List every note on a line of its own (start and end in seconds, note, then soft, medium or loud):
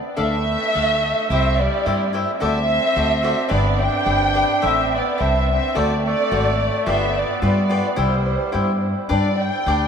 0.17 0.55 D2 medium
0.17 1.27 A3 medium
0.17 0.35 D4 medium
0.17 0.35 A4 medium
0.17 0.35 D5 medium
0.17 1.27 E5 loud
0.17 0.35 F5 medium
0.74 1.11 D2 medium
0.74 0.92 D4 soft
0.74 0.92 A4 soft
0.74 0.92 D5 medium
0.74 0.93 F5 medium
1.30 1.67 C2 medium
1.30 1.62 C4 medium
1.30 1.48 E4 medium
1.30 1.48 G4 medium
1.30 1.48 C5 medium
1.30 1.58 E5 medium
1.30 1.48 E5 medium
1.60 2.15 G3 medium
1.60 2.15 D5 medium
1.86 2.22 G2 medium
1.86 2.03 E4 medium
1.86 2.04 G4 medium
1.86 2.03 C5 medium
1.86 2.04 E5 medium
2.13 2.30 E4 soft
2.13 2.30 G4 soft
2.13 2.31 C5 medium
2.13 2.31 E5 medium
2.40 2.77 D2 medium
2.40 3.54 C4 medium
2.40 2.58 F#4 medium
2.40 2.58 A4 medium
2.40 2.58 C5 medium
2.40 2.59 D5 medium
2.40 3.47 E5 loud
2.96 3.32 D2 medium
2.96 3.13 F#4 medium
2.96 3.13 A4 medium
2.96 3.14 C5 medium
2.96 3.14 D5 medium
3.23 3.40 F#4 medium
3.23 3.40 A4 medium
3.23 3.40 C5 medium
3.23 3.41 D5 medium
3.48 3.87 G1 medium
3.48 3.67 D4 medium
3.48 3.67 G4 medium
3.48 3.67 B4 medium
3.48 3.67 D5 medium
3.48 3.80 D5 medium
3.53 3.84 B3 medium
3.81 4.68 D4 medium
3.81 4.64 G5 loud
4.05 4.43 G1 medium
4.05 4.23 D4 soft
4.05 4.24 G4 medium
4.05 4.24 B4 medium
4.05 4.24 D5 medium
4.34 4.51 D4 soft
4.34 4.52 G4 medium
4.34 4.52 B4 medium
4.34 4.52 D5 medium
4.61 5.00 A1 medium
4.61 4.80 E4 medium
4.61 4.80 A4 soft
4.61 4.80 C5 medium
4.61 4.80 E5 medium
4.61 4.93 E5 medium
4.66 4.97 C4 medium
4.94 5.23 B3 medium
4.94 5.21 D5 medium
5.18 5.57 C2 medium
5.18 5.50 C4 medium
5.18 5.36 E4 soft
5.18 5.37 A4 medium
5.18 5.37 C5 medium
5.18 5.37 E5 medium
5.18 5.49 E5 medium
5.50 5.81 C4 medium
5.50 5.75 E5 medium
5.75 6.12 D2 medium
5.75 5.93 F#4 medium
5.75 5.93 A4 medium
5.75 5.93 C5 medium
5.75 6.04 D5 medium
5.75 5.93 D5 medium
5.79 6.06 A3 medium
6.05 6.92 A3 medium
6.05 6.84 D5 medium
6.31 6.68 G#1 medium
6.31 6.49 F#4 medium
6.31 6.49 A4 medium
6.31 6.49 C5 medium
6.31 6.49 D5 medium
6.86 7.23 G1 medium
6.86 7.18 B3 medium
6.86 7.04 F4 medium
6.86 7.04 G4 medium
6.86 7.04 B4 medium
6.86 7.04 D5 medium
6.86 7.16 E5 medium
7.17 7.44 B3 medium
7.17 7.43 D5 medium
7.42 7.79 G2 medium
7.42 8.01 B3 medium
7.42 7.60 F4 soft
7.42 7.60 G4 medium
7.42 7.60 B4 medium
7.42 7.60 D5 medium
7.42 7.96 D5 medium
7.69 7.87 F4 medium
7.69 7.87 G4 medium
7.69 7.87 B4 medium
7.69 7.87 D5 medium
7.96 8.34 C2 medium
7.96 8.84 G3 medium
7.96 8.14 E4 medium
7.96 8.14 G4 medium
7.96 8.15 C5 medium
7.96 8.85 C5 medium
7.96 8.15 E5 medium
8.52 8.91 G2 medium
8.52 8.71 E4 medium
8.52 8.71 G4 medium
8.52 8.71 C5 medium
8.52 8.72 E5 medium
9.09 9.47 G2 medium
9.09 9.28 D4 medium
9.09 9.28 G4 medium
9.09 9.28 B4 medium
9.09 9.28 D5 medium
9.09 9.38 D5 medium
9.40 9.88 G5 medium
9.66 9.88 D2 medium
9.66 9.84 D4 medium
9.66 9.85 G4 medium
9.66 9.85 B4 medium
9.66 9.85 D5 medium